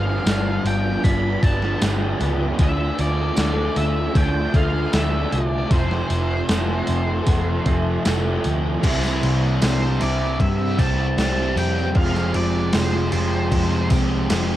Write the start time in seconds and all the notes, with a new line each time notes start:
Already playing: G1 G2 D3 F3 G3 B3 D4 F5
0.25 G1 G2 D3 F3 G3 B3 D4, snare, open hi-hat, tambourine
0.64 G1 F3 G5, open hi-hat
1.03 G1 G2 D3 F3 G3 B3 D4 B5, kick, open hi-hat
1.42 G1 D3 G3 B3 D4 A5, kick, open hi-hat
1.46 F3
1.62 snare
1.80 G1 G2 D3 F3 B3 D4 G4, snare, open hi-hat, tambourine
1.84 G3
2.20 C#2 B3, open hi-hat
2.58 D2 D3 F3 A3 D4, kick, open hi-hat
2.63 E5
2.98 D2 F3 D5, open hi-hat
3.36 D2 D3 F3 A3 D4, snare, open hi-hat, tambourine
3.76 D2 F3 E5, open hi-hat
4.14 D2 D3 F3 A3 D4 G5, kick, open hi-hat
4.54 D2 F3 A3 D4 F5, kick, open hi-hat
4.92 D2 D3 F3 A3 D4 E4 E5, snare, open hi-hat, tambourine
5.32 C2 F3 D5, open hi-hat
5.70 F1 F2 C3 F3 A3 C4 C5, kick, open hi-hat
5.91 snare
6.10 F1, open hi-hat
6.48 F1 F2 C3 F3 A3 C4, snare, open hi-hat, tambourine
6.87 F1, open hi-hat
7.26 F1 F2 C3 F3 A3 C4, kick, open hi-hat
7.65 F1 C3 F3 A3 C4, kick, open hi-hat
8.04 F1 F2 C3 F3 A3 C4, snare, open hi-hat, tambourine
8.44 D2, open hi-hat
8.82 C2 C3 E3 G3 C4 E4, kick, crash, tambourine
9.03 snare, tambourine
9.22 C2 C4, crash
9.61 C2 C3 G3 C4 D4 C5, snare, tambourine, crash
9.99 C2 C3 E3 G3 C4 E4 G4 D5, tambourine, crash
10.39 G2 C3 G3 C4 E5, kick, crash
10.59 tambourine
10.78 C2 C3 G3 C4 G4 A5, kick, tambourine, crash
11.16 C2 C3 G3 C4 D4, snare, tambourine, crash
11.20 C4
11.56 F2 G3 C4 G4 G5, tambourine, crash
11.78 tambourine
11.94 F1 F2 C3 F3 G#3 C4 F5, kick, tambourine, crash
11.98 F3 F4
12.15 snare, tambourine
12.34 F1 G#3 D5, crash
12.73 F1 F2 C3 F3 C4 C5, snare, tambourine, crash
13.12 F1 C3 F3 G#3 C4 F4 G4, tambourine, crash
13.51 F2 C3 F3 G#3, kick, crash
13.71 tambourine
13.90 C2 F2 C3 F3 G4, kick, tambourine, crash
14.30 F1 F2 C3 F3 C4, snare, tambourine, crash